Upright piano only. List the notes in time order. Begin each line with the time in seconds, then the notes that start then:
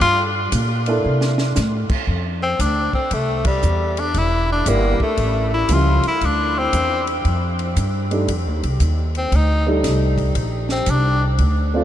0.87 A#3 D4 E4 A4
4.67 G3 A#3 D4 E4
5.70 F3 G3 C#4 E4
8.11 G3 A3 D4 D#4
9.67 G3 A3 D4 D#4
11.73 A3 C4 D4 F4